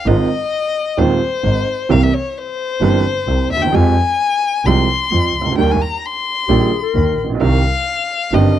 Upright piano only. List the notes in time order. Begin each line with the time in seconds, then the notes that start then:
0.07 G#1 G#2 D#3 G#3 C4 F4
0.97 D#1 D#2 D#3 G#3 C4 F4
1.43 G#1 G#2
1.89 C2 C3 E3 A#3 C4 G4
2.81 G1 G2 E3 A#3 C4 G4
3.28 C2 C3
3.56 D2
3.61 D#2
3.67 E2
3.72 F2 F3 G#3 C4 G4
4.67 C2 C3 F3 G#3 C4 G4
5.12 F2 F3
5.41 C2
5.46 C#2
5.52 D2
5.58 D#2 D#3 G3 A#3 G4
6.49 A#1 A#2 D#3 G3 A#3 G4
6.95 D#2 D#3
7.24 A1
7.30 A#1
7.35 B1
7.40 C2 C3 D#3 G3 C4 G4
8.32 G1 G2 D#3 G3 C4 G4